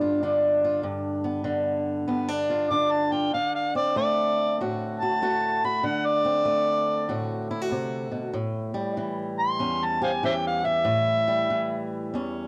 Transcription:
0.00 0.81 G2 medium
0.00 0.22 D3 medium
0.00 0.81 B3 medium
0.00 0.23 D4 medium
0.00 0.62 F4 medium
0.23 1.43 D3 medium
0.23 2.07 D4 medium
0.65 0.82 F4 medium
0.83 2.07 G2 medium
1.24 2.06 B3 medium
1.44 2.69 D3 medium
2.08 3.30 G2 medium
2.08 2.28 B3 medium
2.28 2.70 D4 medium
2.50 3.11 F4 medium
2.71 3.33 D3 medium
2.71 3.75 D4 medium
2.71 2.93 D6 medium
2.91 3.14 A5 medium
3.12 3.31 F4 medium
3.12 3.32 G5 medium
3.34 5.82 D3 medium
3.34 3.53 F5 medium
3.55 3.75 F5 medium
3.75 5.82 C4 medium
3.75 3.95 D5 medium
3.96 5.22 A3 medium
3.96 4.57 D5 medium
4.61 5.85 A2 medium
4.61 5.00 F#4 medium
5.00 5.21 F#4 medium
5.00 5.61 A5 loud
5.22 6.45 A3 medium
5.22 5.62 F#4 medium
5.64 5.82 F#4 medium
5.64 5.87 B5 medium
5.83 8.35 D3 medium
5.83 6.07 F#5 medium
6.06 7.27 D5 medium
6.25 8.32 C4 medium
6.45 8.74 A3 medium
7.09 7.71 A2 medium
7.09 7.50 F#4 medium
7.51 7.62 E4 medium
7.62 8.35 F#4 medium
7.71 8.11 C3 medium
8.12 8.33 B2 medium
8.34 9.60 A2 medium
8.74 11.27 G3 medium
8.97 10.23 E3 medium
9.40 9.86 C6 loud
9.59 10.86 E2 medium
9.59 10.23 C#4 medium
9.85 10.02 A5 medium
10.02 10.64 G4 medium
10.02 10.12 C5 soft
10.02 10.11 F5 soft
10.02 10.23 G#5 medium
10.23 11.50 E3 medium
10.23 10.84 C#4 medium
10.23 10.33 C5 medium
10.23 10.34 E5 medium
10.23 10.45 G5 medium
10.47 10.67 F5 medium
10.65 10.84 G4 medium
10.65 11.88 E5 loud
10.85 12.12 A2 medium
11.28 12.47 G3 medium
11.50 12.47 E3 medium
12.14 12.47 E2 medium
12.14 12.47 C#4 medium

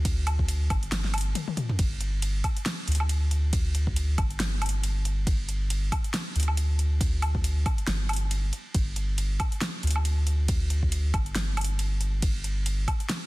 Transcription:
0.00 0.69 D2 loud
0.05 kick loud
0.05 closed hi-hat medium
0.05 ride medium
0.27 closed hi-hat medium
0.27 low woodblock medium
0.39 kick medium
0.48 closed hi-hat medium
0.48 ride medium
0.70 1.34 G1 loud
0.70 kick loud
0.70 closed hi-hat medium
0.70 low woodblock medium
0.83 closed hi-hat soft
0.92 snare loud
0.92 closed hi-hat medium
0.92 ride medium
1.04 snare soft
1.14 closed hi-hat medium
1.14 low woodblock medium
1.18 closed hi-hat medium
1.21 closed hi-hat medium
1.35 closed hi-hat medium
1.35 high tom medium
1.35 ride soft
1.48 high tom medium
1.57 closed hi-hat medium
1.57 mid tom medium
1.69 mid tom medium
1.79 2.43 G1 loud
1.79 kick loud
1.79 closed hi-hat medium
1.79 ride medium
2.01 closed hi-hat medium
2.22 closed hi-hat medium
2.22 ride medium
2.44 kick medium
2.44 closed hi-hat medium
2.44 low woodblock medium
2.57 closed hi-hat soft
2.66 snare loud
2.66 closed hi-hat medium
2.66 ride medium
2.88 4.17 D2 loud
2.88 closed hi-hat medium
2.92 closed hi-hat medium
2.95 closed hi-hat medium
3.00 low woodblock medium
3.09 closed hi-hat medium
3.09 ride soft
3.31 closed hi-hat medium
3.53 kick loud
3.53 closed hi-hat medium
3.53 ride medium
3.75 closed hi-hat medium
3.87 kick medium
3.96 closed hi-hat medium
3.96 ride medium
4.18 5.25 G1 loud
4.18 kick loud
4.18 closed hi-hat medium
4.18 low woodblock soft
4.31 closed hi-hat soft
4.40 snare loud
4.40 closed hi-hat medium
4.40 ride medium
4.62 closed hi-hat medium
4.62 low woodblock medium
4.66 closed hi-hat medium
4.69 closed hi-hat medium
4.83 closed hi-hat medium
4.83 ride soft
5.05 closed hi-hat medium
5.27 5.91 G1 loud
5.27 kick loud
5.27 closed hi-hat medium
5.27 ride medium
5.49 closed hi-hat medium
5.70 closed hi-hat medium
5.70 ride soft
5.92 kick medium
5.92 closed hi-hat medium
5.92 low woodblock medium
6.04 closed hi-hat soft
6.14 snare loud
6.14 closed hi-hat medium
6.14 ride medium
6.36 7.64 D2 loud
6.36 closed hi-hat medium
6.40 closed hi-hat medium
6.43 closed hi-hat medium
6.48 low woodblock soft
6.57 closed hi-hat medium
6.57 ride soft
6.79 closed hi-hat medium
7.01 kick loud
7.01 closed hi-hat medium
7.01 ride medium
7.22 closed hi-hat medium
7.22 low woodblock medium
7.35 kick medium
7.44 closed hi-hat medium
7.44 ride soft
7.66 kick loud
7.66 closed hi-hat medium
7.66 low woodblock medium
7.78 closed hi-hat soft
7.87 8.51 G1 loud
7.87 snare loud
7.87 closed hi-hat medium
7.87 ride medium
8.09 closed hi-hat soft
8.09 low woodblock medium
8.13 closed hi-hat medium
8.16 closed hi-hat medium
8.31 closed hi-hat medium
8.31 ride soft
8.53 closed hi-hat medium
8.74 9.38 G1 loud
8.74 kick loud
8.74 closed hi-hat medium
8.74 ride medium
8.96 closed hi-hat medium
9.18 closed hi-hat medium
9.18 ride soft
9.40 kick medium
9.40 closed hi-hat medium
9.40 low woodblock medium
9.52 closed hi-hat soft
9.61 snare loud
9.61 closed hi-hat medium
9.61 ride medium
9.83 11.12 D2 medium
9.83 closed hi-hat soft
9.87 closed hi-hat medium
9.91 closed hi-hat medium
9.96 low woodblock medium
10.05 closed hi-hat medium
10.05 ride soft
10.27 closed hi-hat medium
10.48 kick loud
10.48 closed hi-hat medium
10.48 ride medium
10.70 closed hi-hat medium
10.83 kick medium
10.92 closed hi-hat medium
10.92 ride soft
11.14 12.21 G1 loud
11.14 kick loud
11.14 closed hi-hat medium
11.14 low woodblock medium
11.26 closed hi-hat soft
11.35 snare loud
11.35 closed hi-hat medium
11.35 ride medium
11.57 closed hi-hat soft
11.57 low woodblock medium
11.61 closed hi-hat medium
11.64 closed hi-hat medium
11.79 closed hi-hat medium
11.79 ride soft
12.01 closed hi-hat medium
12.22 12.86 G1 loud
12.22 kick loud
12.22 closed hi-hat medium
12.22 ride medium
12.44 closed hi-hat medium
12.66 closed hi-hat medium
12.66 ride medium
12.88 kick medium
12.88 closed hi-hat medium
12.88 low woodblock medium
13.00 closed hi-hat soft
13.09 snare loud
13.09 closed hi-hat medium
13.09 ride medium

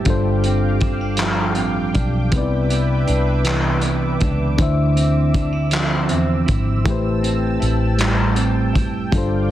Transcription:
0.00 1.17 G3 medium
0.00 0.45 C4 medium
0.00 0.13 E4 medium
0.00 2.30 G4 medium
0.05 1.59 G1 loud
0.05 2.33 G2 medium
0.05 2.28 G3 medium
0.05 2.28 D4 medium
0.05 2.29 F4 medium
0.05 2.31 F5 medium
0.05 4.56 G5 medium
0.05 2.31 D6 medium
0.05 kick loud
0.05 closed hi-hat medium
0.09 2.30 A4 medium
0.09 2.30 C5 medium
0.44 0.82 C4 medium
0.44 closed hi-hat soft
0.81 1.01 C4 medium
0.81 kick loud
0.81 closed hi-hat soft
1.01 1.93 D4 medium
1.17 2.39 F3 medium
1.17 clap loud
1.17 closed hi-hat medium
1.55 2.69 C4 medium
1.55 closed hi-hat soft
1.59 1.92 A1 loud
1.94 2.30 B1 loud
1.94 3.07 D4 medium
1.94 kick medium
1.94 closed hi-hat medium
2.31 3.04 C2 loud
2.31 4.58 C3 medium
2.31 4.54 C3 medium
2.31 4.55 B3 medium
2.31 2.40 D#4 medium
2.31 4.56 B4 medium
2.31 4.57 E5 medium
2.31 6.82 D6 medium
2.31 kick loud
2.31 closed hi-hat medium
2.36 4.57 B4 medium
2.36 4.57 D5 medium
2.41 4.58 E4 medium
2.69 3.82 B3 medium
2.69 closed hi-hat soft
3.07 4.18 C2 loud
3.07 4.20 D4 medium
3.07 closed hi-hat soft
3.44 5.37 E3 medium
3.44 clap loud
3.44 closed hi-hat medium
3.81 4.66 B3 medium
3.81 closed hi-hat medium
4.20 4.56 C#2 loud
4.20 4.99 D4 medium
4.20 kick medium
4.20 closed hi-hat medium
4.57 6.11 D2 loud
4.57 6.80 D3 medium
4.57 6.85 D3 medium
4.57 9.09 C4 medium
4.57 6.81 D4 medium
4.57 6.81 E4 medium
4.57 6.84 E5 medium
4.57 9.08 E6 medium
4.57 kick loud
4.57 closed hi-hat medium
4.61 6.82 C5 medium
4.61 6.83 E5 medium
4.96 6.09 C4 medium
4.96 closed hi-hat medium
5.34 5.53 D4 medium
5.34 kick medium
5.34 closed hi-hat soft
5.53 6.45 E4 medium
5.71 6.93 F3 medium
5.71 clap loud
5.71 closed hi-hat medium
6.09 6.45 E2 loud
6.09 7.22 C4 medium
6.09 closed hi-hat medium
6.46 6.83 G#1 loud
6.46 7.60 E4 medium
6.46 kick medium
6.46 closed hi-hat medium
6.85 7.57 A1 loud
6.85 9.11 A2 medium
6.85 9.07 A3 medium
6.85 9.08 E4 medium
6.85 9.09 G4 medium
6.85 9.51 G5 medium
6.85 9.09 A5 medium
6.85 kick loud
6.85 closed hi-hat medium
6.89 9.10 B4 medium
6.89 9.10 C5 medium
7.23 8.36 C4 medium
7.23 closed hi-hat soft
7.60 8.77 A1 loud
7.60 8.72 E4 medium
7.60 closed hi-hat soft
7.98 9.51 G3 medium
7.98 clap loud
7.98 closed hi-hat medium
8.36 9.49 C4 medium
8.36 closed hi-hat soft
8.73 9.09 F#1 loud
8.73 9.19 E4 medium
8.73 kick medium
8.73 closed hi-hat medium
9.12 9.51 G1 loud
9.12 9.51 G2 medium
9.12 9.51 G3 medium
9.12 9.51 D4 medium
9.12 9.51 F4 medium
9.12 9.51 A4 medium
9.12 9.51 D5 medium
9.12 9.51 F5 medium
9.12 9.51 D6 medium
9.12 kick loud
9.12 closed hi-hat medium
9.18 9.51 C5 medium

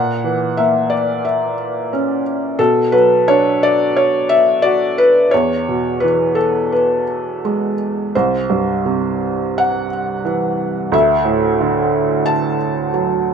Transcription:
0.00 2.55 A#2 medium
0.00 0.59 F#5 medium
0.24 1.54 E3 soft
0.57 1.89 A#3 soft
0.57 0.92 E5 medium
0.90 1.25 D5 medium
1.25 2.21 E5 medium
1.93 2.57 C#4 soft
2.59 5.28 B2 medium
2.59 2.93 A4 medium
2.92 4.25 F#3 soft
2.92 3.28 B4 medium
3.28 4.60 D4 medium
3.28 3.63 C#5 medium
3.63 3.94 D5 medium
3.97 4.31 C#5 medium
4.29 4.64 E5 loud
4.62 5.30 F#4 medium
4.62 4.98 D5 medium
4.98 5.30 B4 medium
5.31 8.11 E2 medium
5.31 6.04 C#5 medium
5.69 7.04 B2 soft
6.00 7.39 E3 soft
6.00 6.37 B4 medium
6.35 6.72 A4 medium
6.72 7.75 B4 medium
7.45 8.13 G#3 soft
8.15 10.90 C2 medium
8.15 9.60 C5 medium
8.50 9.86 G2 soft
8.86 10.21 C3 soft
9.58 9.89 F#5 medium
10.25 10.91 E3 soft
10.92 13.34 D2 medium
10.92 12.32 E5 medium
11.25 12.56 A2 soft
11.61 12.90 D3 medium
12.26 12.57 A5 medium
12.94 13.34 F#3 medium

